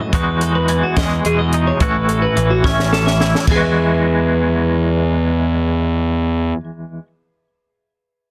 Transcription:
Already playing: clean electric guitar F#2 E3 C#4 E4 F#4
0.00 clean electric guitar D#5
0.13 picked electric bass E2, clean electric guitar E2 G#3 D#4 F#4 B4, kick, closed hi-hat
0.41 clean electric guitar A4, closed hi-hat
0.55 clean electric guitar B4
0.68 clean electric guitar E3, closed hi-hat
0.83 clean electric guitar F#4
0.97 picked electric bass E2, clean electric guitar G#3 D#5, kick, snare, closed hi-hat
1.25 picked electric bass E2, clean electric guitar B2 G#4, closed hi-hat
1.39 clean electric guitar D#5
1.53 clean electric guitar D#4, closed hi-hat
1.67 clean electric guitar C#5
1.80 picked electric bass A1, clean electric guitar A2 C#4 E4 F#4 B4, kick, closed hi-hat
2.08 clean electric guitar A4, closed hi-hat
2.22 clean electric guitar B4
2.36 picked electric bass A1, clean electric guitar E3, closed hi-hat
2.50 clean electric guitar F#4
2.64 picked electric bass A1, clean electric guitar C#4 E5, kick, snare
2.79 snare
2.93 clean electric guitar E3 A4, snare
3.06 clean electric guitar E5, snare
3.20 clean electric guitar E4, snare
3.35 clean electric guitar D#5, snare
3.47 picked electric bass E2, clean electric guitar E2 E3, kick, crash
3.52 clean electric guitar G#3 G#4
3.56 clean electric guitar F#4 B4 E5

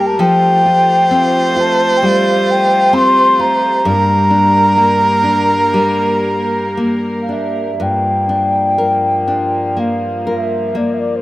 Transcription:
Already playing: nylon-string guitar G2 G3 A#3 G4, string section A#3 G4 A#4, viola A#4
0.06 flute A5
0.17 nylon-string guitar F3 A4, string section A3 F4, viola C5, flute G5
0.66 nylon-string guitar F4
1.11 nylon-string guitar C4
1.56 nylon-string guitar F4, flute A5
1.96 flute G5
2.01 nylon-string guitar G3, string section F4, flute F5
2.50 flute G5
2.93 nylon-string guitar C4, flute C6
3.39 nylon-string guitar F4, flute A#5
3.82 nylon-string guitar G2, string section A#3 A#4, viola A#4
4.30 nylon-string guitar D4
4.77 nylon-string guitar A#3
5.24 nylon-string guitar D4
5.74 nylon-string guitar G3
6.77 nylon-string guitar A#3
7.22 flute F5
7.29 nylon-string guitar D4, flute E5
7.79 string section G2 F3 A#3, nylon-string guitar G2, flute G5
8.29 nylon-string guitar D4
8.78 nylon-string guitar A#4
9.28 nylon-string guitar D4
9.77 nylon-string guitar A#3, flute F5
10.27 nylon-string guitar A#4, flute E5
10.75 nylon-string guitar A#3, flute D5
10.93 flute E5
10.98 flute D5
11.15 flute C5

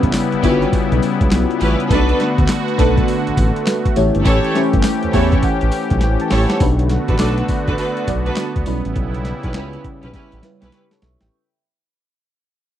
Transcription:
Already playing: analog synth pad C#3 G3 B3 E4, fm electric piano G3 B3 C#4 E4 B4
0.03 analog synth bass A1, kick, closed hi-hat
0.13 snare, clap, closed hi-hat, tambourine
0.32 analog synth bass G1, closed hi-hat
0.43 analog synth bass G1, fm electric piano G3 B3 C#4 E4 F4, string section C#4 E4 G4 B4, kick, closed hi-hat, tambourine
0.51 fm electric piano F#4
0.62 closed hi-hat
0.73 kick, closed hi-hat, tambourine
0.92 analog synth bass B1, closed hi-hat
1.02 closed hi-hat, tambourine
1.21 analog synth bass C#2, kick, closed hi-hat
1.31 analog synth bass B1, snare, clap, closed hi-hat, tambourine
1.51 closed hi-hat
1.60 analog synth bass A1, string section C#4 E4 G4 B4, closed hi-hat, tambourine
1.80 closed hi-hat
1.89 analog synth bass B1, analog synth pad D3 A3 F#4, fm electric piano A3 B3 D4 F#4 B4, string section D4 F#4 A4 B4, kick, closed hi-hat, tambourine
2.09 closed hi-hat
2.20 fm electric piano A3 B3 D4 F#4 B4, snare, closed hi-hat
2.38 analog synth bass D2, kick, closed hi-hat
2.48 snare, clap, closed hi-hat, tambourine
2.68 closed hi-hat
2.78 analog synth bass B1, fm electric piano A3 B3 D4 F#4 A4, string section D4 F#4 A4 B4, kick, closed hi-hat, tambourine
2.97 kick, closed hi-hat
3.08 closed hi-hat, tambourine
3.27 analog synth bass A1, closed hi-hat
3.37 analog synth bass A1, kick, closed hi-hat, tambourine
3.56 closed hi-hat
3.66 snare, clap, closed hi-hat, tambourine
3.85 kick, closed hi-hat
3.96 analog synth bass A1, analog synth pad E3 C#4 G4, fm electric piano A3 C#4 E4 G4 C#5, closed hi-hat, tambourine
4.15 analog synth bass G1, closed hi-hat
4.25 analog synth bass A1, string section E4 G4 A4 C#5, kick, closed hi-hat, tambourine
4.44 closed hi-hat
4.55 fm electric piano A3 C#4 E4 G4 C5, snare, closed hi-hat
4.63 fm electric piano C#5
4.73 analog synth bass G1, kick, closed hi-hat
4.83 snare, clap, closed hi-hat, tambourine
5.03 analog synth bass E2, closed hi-hat
5.13 analog synth bass E2, fm electric piano A3 C#4 E4 G4 C#5 F#5, string section E4 G4 A4 C#5, kick, open hi-hat, tambourine
5.32 fm electric piano G5, kick, closed hi-hat
5.43 fm electric piano F#5, kick, closed hi-hat, tambourine
5.61 analog synth bass A1, closed hi-hat
5.71 closed hi-hat, tambourine
5.90 analog synth bass B1, kick, closed hi-hat
6.01 analog synth bass A1, fm electric piano G5, snare, closed hi-hat
6.20 fm electric piano A5, closed hi-hat
6.30 analog synth bass A1, string section E4 G4 A4 C#5, fm electric piano G5, snare, open hi-hat
6.50 snare, closed hi-hat
6.60 analog synth bass B1, analog synth pad D3 A3 B3 F#4, fm electric piano A3 D4 F#4 B4, kick, closed hi-hat, tambourine
6.79 closed hi-hat
6.89 snare, closed hi-hat
7.08 analog synth bass A1, string section D4 F#4 A4 B4, kick, closed hi-hat
7.19 analog synth bass B1, fm electric piano A3 D4 F#4 D5, string section D4 F#4 A4 B4, snare, clap, closed hi-hat, tambourine
7.38 closed hi-hat
7.48 kick, closed hi-hat, tambourine
7.67 analog synth bass A1, string section D4 F#4 A4 B4, kick, closed hi-hat
7.78 string section D4 F#4 A4 B4, closed hi-hat, tambourine
7.97 closed hi-hat
8.07 analog synth bass B1, fm electric piano A3 D4 F#4 D5, kick, closed hi-hat, tambourine
8.26 string section D4 F#4 A4 B4, closed hi-hat
8.36 snare, clap, closed hi-hat, tambourine
8.56 analog synth bass D2, kick, closed hi-hat
8.66 analog synth bass B1, analog synth pad C#3 G3 E4, fm electric piano G3 C#4 E4 B4, closed hi-hat, tambourine
8.85 analog synth bass A1, closed hi-hat
8.96 analog synth bass B1, kick, closed hi-hat
9.14 closed hi-hat
9.25 snare, closed hi-hat
9.43 analog synth bass B1, string section C#4 E4 G4 B4, kick, closed hi-hat
9.54 analog synth bass C#2, fm electric piano G3 C#4 E4 B4, string section C#4 E4 G4 B4, snare, clap, closed hi-hat
9.73 closed hi-hat
9.84 kick, closed hi-hat
10.03 analog synth bass B1, string section C#4 E4 G4 B4, closed hi-hat
10.13 string section C#4 E4 G4 B4, kick, snare, closed hi-hat
10.32 analog synth bass A1, closed hi-hat
10.43 fm electric piano G3 C#4 E4 B4, snare, closed hi-hat
10.62 analog synth bass B1, string section C#4 E4 G4 B4, snare, closed hi-hat
10.72 fm electric piano G4 B4 C#6, snare, closed hi-hat
10.91 fm electric piano A4 C#5, snare, closed hi-hat
11.02 analog synth bass B1, fm electric piano C#5 E5, snare, closed hi-hat
11.21 analog synth bass A1, fm electric piano E5 G5, snare, closed hi-hat

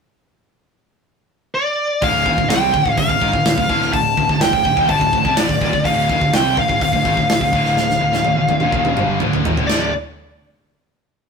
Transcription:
1.55 lead electric guitar D5
2.02 picked electric bass D1, distorted electric guitar D2 A2 D3, lead electric guitar F5, kick, open hi-hat
2.26 picked electric bass D#1, distorted electric guitar D#2 A#2, kick
2.38 picked electric bass D1, distorted electric guitar D2 A2, kick
2.49 picked electric bass C2, distorted electric guitar C3 G3 C4, lead electric guitar G5, snare, open hi-hat
2.74 picked electric bass D1, distorted electric guitar D2 A2, kick
2.85 picked electric bass D1, distorted electric guitar D2 A2, kick
2.97 picked electric bass D1, distorted electric guitar D2 A2, lead electric guitar F5, kick, open hi-hat
3.08 picked electric bass D1, distorted electric guitar D2 A2, kick
3.21 picked electric bass G#1, distorted electric guitar G#2 D#3, kick
3.33 picked electric bass D1, distorted electric guitar D2 A2, kick
3.46 picked electric bass D1, distorted electric guitar D2 A2, snare, open hi-hat
3.57 picked electric bass D1, distorted electric guitar D2 A2, kick
3.69 picked electric bass D1, distorted electric guitar D2 A2 D3, kick
3.82 snare
3.92 picked electric bass D1, distorted electric guitar D2 A2, lead electric guitar A5, kick, open hi-hat
4.17 picked electric bass D1, distorted electric guitar D2 A2, kick
4.29 picked electric bass D1, distorted electric guitar D2 A2, kick
4.41 picked electric bass D1, distorted electric guitar D2 A2, lead electric guitar G5, snare, open hi-hat
4.53 picked electric bass D1, distorted electric guitar D2 A2, kick
4.65 picked electric bass D1, distorted electric guitar D2 A2, kick
4.76 picked electric bass D#1, distorted electric guitar D#2 A#2, kick
4.88 picked electric bass G1, distorted electric guitar G2 D3, lead electric guitar A5, kick, open hi-hat
5.01 picked electric bass D1, distorted electric guitar D2 A2, kick
5.12 picked electric bass D1, distorted electric guitar D2 A2, kick
5.24 picked electric bass C2, distorted electric guitar C3 G3, kick
5.35 picked electric bass D1, distorted electric guitar D2 A2, lead electric guitar D5, snare, open hi-hat
5.49 picked electric bass D1, distorted electric guitar D2 A2, kick
5.60 picked electric bass D#1, distorted electric guitar D#2 A#2, kick
5.73 picked electric bass D1, distorted electric guitar D2 A2, kick
5.85 picked electric bass D1, distorted electric guitar D2 A2 D3, lead electric guitar F5, kick, open hi-hat
6.09 picked electric bass D#1, distorted electric guitar D#2 A#2, kick
6.21 picked electric bass D1, distorted electric guitar D2 A2, kick
6.32 picked electric bass C2, distorted electric guitar C3 G3 C4, lead electric guitar G5, snare, open hi-hat
6.57 picked electric bass D1, distorted electric guitar D2 A2, lead electric guitar F5, kick
6.68 picked electric bass D1, distorted electric guitar D2 A2, kick
6.81 picked electric bass D1, distorted electric guitar D2 A2, lead electric guitar F5, kick, open hi-hat
6.93 picked electric bass D1, distorted electric guitar D2 A2, kick
7.05 picked electric bass G#1, distorted electric guitar G#2 D#3, kick
7.17 picked electric bass D1, distorted electric guitar D2 A2, kick
7.30 picked electric bass D1, distorted electric guitar D2 A2, snare, open hi-hat
7.41 picked electric bass D1, distorted electric guitar D2 A2, kick
7.53 picked electric bass D1, distorted electric guitar D2 A2 D3, kick
7.66 snare
7.77 picked electric bass D1, distorted electric guitar D2 A2, snare
7.90 snare
8.01 picked electric bass D1, distorted electric guitar D2 A2
8.13 picked electric bass D1, distorted electric guitar D2 A2, snare
8.25 picked electric bass D1, distorted electric guitar D2 A2, high tom
8.37 picked electric bass D1, distorted electric guitar D2 A2
8.49 picked electric bass D1, distorted electric guitar D2 A2, high tom
8.60 picked electric bass D#1, distorted electric guitar D#2 A#2, mid tom
8.72 picked electric bass D#1, distorted electric guitar D#2 A#2 D#3, kick
8.85 mid tom
8.96 picked electric bass G1, distorted electric guitar G2 D3 G3, mid tom
9.20 picked electric bass D1, distorted electric guitar D2 A2 D3, mid tom
9.33 floor tom
9.45 picked electric bass G#1, distorted electric guitar G#2 D#3, floor tom
9.57 picked electric bass D1, distorted electric guitar D2 A2, floor tom
9.67 picked electric bass D1, distorted electric guitar D2 A2 D3, lead electric guitar D5, snare, china

